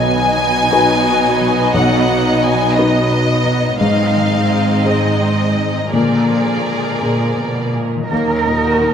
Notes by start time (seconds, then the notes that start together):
Already playing: B1 B2 F#3 B3 D#4 D#5 G#5
0.03 B3
0.37 F#3
0.72 D#4 F#4 B4
1.06 B4
1.40 F#3
1.74 B1 B2 F#5
2.08 B3
2.42 F#3 G#5
2.76 D#4 F#4 B4 D#5
3.11 B4
3.45 F#3
3.79 G#2 G#3 C4 D#4 D#5 F5
4.15 D#3
4.50 G#3
4.85 D#4 G#4 C5 D#5
5.21 C5
5.57 G#3
5.93 A#2 D3 F3 A#3 G#4 A#4 D5
6.30 F3
6.67 G#3
7.02 A#2 A#3 G#4 A#4
7.39 B2 A#4
7.75 A#2 G#3
7.94 D#3
7.99 F#3
8.03 A#3
8.08 D#2 D#4 A#4
8.12 A#3
8.29 C#4
8.47 A#2 D#4
8.64 F#4
8.81 A#3 D#4